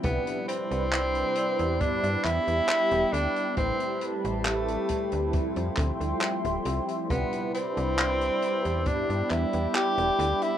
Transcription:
0.03 0.19 C2 medium
0.03 1.72 C3 medium
0.03 1.71 G3 medium
0.03 0.45 B3 medium
0.03 1.72 D4 medium
0.03 3.53 E4 medium
0.03 1.72 E4 medium
0.03 1.73 B4 medium
0.03 3.53 D5 medium
0.03 5.30 B5 medium
0.03 kick loud
0.03 closed hi-hat medium
0.27 closed hi-hat medium
0.48 1.82 C4 loud
0.48 closed hi-hat loud
0.71 1.24 C2 medium
0.71 closed hi-hat medium
0.93 clap loud
0.93 closed hi-hat medium
1.15 closed hi-hat soft
1.36 closed hi-hat loud
1.59 1.81 E2 medium
1.59 closed hi-hat medium
1.79 1.99 G2 soft
1.79 3.48 G3 medium
1.79 3.48 B3 medium
1.79 3.49 D4 medium
1.79 2.26 D4 loud
1.79 3.49 E4 medium
1.79 3.49 G4 medium
1.79 3.56 G5 medium
1.79 kick loud
1.79 closed hi-hat medium
2.04 2.17 G2 medium
2.04 closed hi-hat medium
2.24 2.39 E2 medium
2.24 3.14 E4 loud
2.24 clap medium
2.24 closed hi-hat loud
2.48 2.61 E2 medium
2.48 closed hi-hat medium
2.69 clap loud
2.69 closed hi-hat medium
2.91 3.05 E1 loud
2.91 closed hi-hat medium
3.13 3.28 D2 medium
3.13 3.56 D4 loud
3.13 closed hi-hat medium
3.36 closed hi-hat medium
3.56 3.72 A1 loud
3.56 5.24 G3 medium
3.56 5.25 A3 medium
3.56 4.15 C4 loud
3.56 5.25 C4 medium
3.56 5.26 E4 medium
3.56 5.32 G4 medium
3.56 5.25 B4 medium
3.56 5.32 A5 medium
3.56 kick loud
3.56 closed hi-hat medium
3.80 closed hi-hat medium
4.01 closed hi-hat medium
4.24 4.77 A1 medium
4.24 closed hi-hat medium
4.44 5.29 A3 medium
4.44 clap loud
4.44 closed hi-hat medium
4.68 closed hi-hat medium
4.88 kick medium
4.88 closed hi-hat medium
5.12 5.40 D2 medium
5.12 closed hi-hat medium
5.32 7.01 F3 medium
5.32 7.08 F3 medium
5.32 7.01 G3 medium
5.32 7.02 A3 medium
5.32 7.02 C4 medium
5.32 7.02 E4 medium
5.32 7.08 E5 medium
5.32 7.08 G5 medium
5.32 7.08 C6 medium
5.32 kick loud
5.32 closed hi-hat medium
5.56 5.70 F2 medium
5.56 closed hi-hat soft
5.77 5.92 D2 medium
5.77 kick loud
5.77 clap medium
5.77 closed hi-hat loud
6.00 6.14 D2 medium
6.00 closed hi-hat soft
6.21 clap loud
6.21 closed hi-hat medium
6.45 6.58 D1 loud
6.45 closed hi-hat soft
6.65 6.80 C2 loud
6.65 closed hi-hat medium
6.89 closed hi-hat medium
7.09 7.25 C2 loud
7.09 8.78 C3 medium
7.09 8.77 G3 medium
7.09 7.51 B3 medium
7.09 8.78 D4 medium
7.09 8.85 E4 medium
7.09 8.78 E4 medium
7.09 8.79 B4 medium
7.09 10.58 D5 medium
7.09 8.85 B5 medium
7.09 kick loud
7.09 closed hi-hat medium
7.33 closed hi-hat medium
7.55 8.89 C4 loud
7.55 closed hi-hat medium
7.77 8.30 C2 medium
7.77 closed hi-hat soft
7.98 clap loud
7.98 closed hi-hat medium
8.21 closed hi-hat medium
8.42 closed hi-hat medium
8.65 8.86 E2 medium
8.65 closed hi-hat soft
8.85 9.05 G2 soft
8.85 10.54 G3 medium
8.85 10.54 B3 medium
8.85 10.55 D4 medium
8.85 9.33 D4 loud
8.85 10.58 E4 medium
8.85 10.55 E4 medium
8.85 10.55 G4 medium
8.85 10.58 G5 medium
8.85 10.58 B5 medium
8.85 kick loud
8.85 closed hi-hat medium
9.10 9.23 G2 medium
9.10 closed hi-hat soft
9.30 9.45 E2 medium
9.30 9.75 E4 medium
9.30 clap medium
9.30 closed hi-hat medium
9.53 9.67 E2 medium
9.53 closed hi-hat medium
9.75 10.44 G4 loud
9.75 clap loud
9.75 closed hi-hat medium
9.98 10.11 E1 loud
9.98 closed hi-hat soft
10.19 10.33 D2 loud
10.19 closed hi-hat medium
10.42 10.58 E4 loud
10.42 closed hi-hat medium

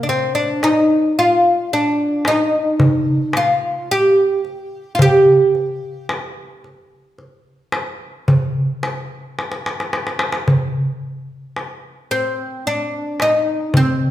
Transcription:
0.03 0.09 D4 medium
0.07 0.35 C4 medium
0.07 darbuka ka soft
0.35 0.63 D4 medium
0.63 1.14 D#4 medium
0.63 darbuka tek medium
1.19 1.73 F4 medium
1.73 2.27 D4 medium
2.25 3.36 D#4 medium
2.25 darbuka tek medium
2.80 darbuka dum medium
3.33 3.91 F4 medium
3.33 darbuka tek medium
3.91 4.94 G4 loud
4.45 darbuka ka soft
4.95 5.00 F4 medium
4.99 6.06 G4 medium
4.99 darbuka dum medium
5.55 darbuka ka soft
6.09 darbuka tek medium
6.64 darbuka ka soft
7.18 darbuka ka soft
7.72 darbuka tek medium
8.28 darbuka dum medium
8.83 darbuka tek medium
9.39 darbuka tek medium
9.52 darbuka ka medium
9.66 darbuka tek medium
9.80 darbuka ka medium
9.93 darbuka tek medium
10.07 darbuka ka medium
10.19 darbuka tek medium
10.32 darbuka ka medium
10.48 darbuka dum medium
11.56 darbuka tek medium
12.11 12.67 C4 medium
12.11 darbuka ka soft
12.67 13.22 D4 medium
13.20 13.77 D#4 medium
13.20 darbuka tek medium
13.74 14.11 C4 medium
13.74 darbuka dum medium

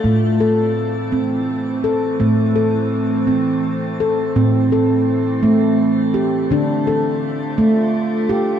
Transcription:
0.00 2.17 A3 medium
0.04 2.16 A2 medium
0.04 4.31 E3 medium
0.04 0.40 A3 medium
0.04 2.18 C4 medium
0.40 1.12 A4 medium
1.12 1.84 C4 medium
1.84 2.20 A4 medium
2.20 4.31 A2 medium
2.20 2.56 A3 medium
2.20 4.33 A3 medium
2.20 4.33 C4 medium
2.56 3.27 A4 medium
3.27 3.99 C4 medium
4.00 4.36 A4 medium
4.34 6.47 A2 medium
4.34 6.48 E3 medium
4.34 8.59 A3 medium
4.34 6.48 C4 medium
4.34 4.72 C4 medium
4.72 5.43 A4 medium
5.43 6.15 A3 medium
6.14 6.50 G4 medium
6.51 8.59 D3 medium
6.51 6.87 D4 medium
6.51 8.59 F4 medium
6.87 7.59 A4 medium
7.58 8.30 A3 medium
8.29 8.59 G4 medium

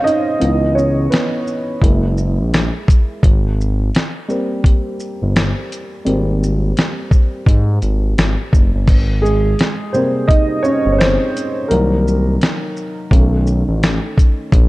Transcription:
0.00 0.36 C#3 soft
0.00 0.37 G#3 soft
0.00 0.43 C4 medium
0.00 0.42 C#4 medium
0.00 0.06 D#4 medium
0.00 0.42 F4 medium
0.00 0.43 C5 medium
0.00 0.42 C#5 medium
0.00 0.04 D#5 medium
0.00 0.77 D#5 loud
0.00 0.43 F5 medium
0.06 0.40 D#4 medium
0.06 closed hi-hat soft
0.06 shaker soft
0.40 1.08 C#2 medium
0.40 0.89 E3 medium
0.40 0.90 B3 soft
0.40 0.90 D#4 medium
0.40 closed hi-hat medium
0.75 1.09 C#4 medium
0.75 1.12 C#5 medium
0.75 shaker soft
1.10 1.78 B3 medium
1.10 1.77 B4 medium
1.10 snare loud
1.10 closed hi-hat medium
1.47 shaker soft
1.81 2.41 F#1 loud
1.81 2.31 G#3 medium
1.81 2.31 A#3 soft
1.81 2.32 E4 medium
1.81 kick medium
1.81 closed hi-hat medium
2.18 shaker soft
2.39 2.71 A#1 medium
2.54 snare medium
2.54 closed hi-hat medium
2.88 kick loud
2.88 closed hi-hat soft
2.88 shaker soft
3.23 3.90 G#1 medium
3.23 kick loud
3.23 closed hi-hat medium
3.61 shaker soft
3.95 snare loud
3.95 closed hi-hat medium
4.28 5.31 G3 medium
4.28 5.31 A#3 soft
4.28 5.31 C4 medium
4.28 shaker soft
4.64 kick medium
4.64 closed hi-hat medium
5.00 shaker soft
5.22 5.53 G1 medium
5.36 snare loud
5.36 closed hi-hat medium
5.72 closed hi-hat soft
5.72 shaker soft
6.05 6.72 G#1 medium
6.05 8.84 G3 medium
6.05 8.84 A#3 soft
6.05 8.84 C4 medium
6.05 closed hi-hat medium
6.43 shaker soft
6.77 snare medium
6.77 closed hi-hat medium
7.11 kick medium
7.11 shaker soft
7.46 7.79 G#2 loud
7.46 kick medium
7.46 closed hi-hat medium
7.82 8.14 G#1 medium
7.82 closed hi-hat soft
7.82 shaker soft
8.18 8.36 G#1 medium
8.18 snare loud
8.18 closed hi-hat medium
8.53 8.72 F#1 medium
8.53 kick loud
8.53 shaker medium
8.74 8.87 G1 medium
8.87 9.55 G#1 medium
8.87 kick loud
8.87 closed hi-hat medium
8.87 crash medium
9.22 9.90 G#3 medium
9.22 9.95 G#4 medium
9.22 shaker soft
9.59 snare medium
9.59 closed hi-hat medium
9.93 10.43 C3 medium
9.93 10.43 G3 soft
9.93 10.43 A#3 medium
9.93 10.27 C4 medium
9.93 10.29 C5 medium
9.93 shaker soft
10.28 10.62 D#4 medium
10.28 10.65 D#5 loud
10.28 kick medium
10.28 closed hi-hat medium
10.63 10.71 C#4 medium
10.63 10.69 C#5 loud
10.63 shaker soft
10.86 11.18 G1 medium
10.92 10.99 C#5 medium
10.98 11.66 C4 medium
10.98 11.65 C5 loud
10.98 snare loud
10.98 closed hi-hat medium
11.37 closed hi-hat medium
11.37 shaker soft
11.68 12.37 C2 loud
11.68 12.19 D#3 medium
11.68 12.19 F#3 soft
11.68 13.08 A#3 medium
11.68 13.06 A#4 medium
11.68 closed hi-hat medium
12.08 shaker soft
12.41 snare loud
12.41 closed hi-hat medium
12.77 shaker soft
13.11 13.64 B1 loud
13.11 14.13 D#3 soft
13.11 14.13 A3 soft
13.11 14.14 C#4 medium
13.11 kick medium
13.11 closed hi-hat medium
13.47 shaker soft
13.69 14.00 A1 medium
13.83 snare loud
13.83 closed hi-hat medium
14.18 kick medium
14.18 closed hi-hat medium
14.18 shaker soft
14.52 14.69 A#1 medium
14.52 kick loud
14.52 closed hi-hat medium

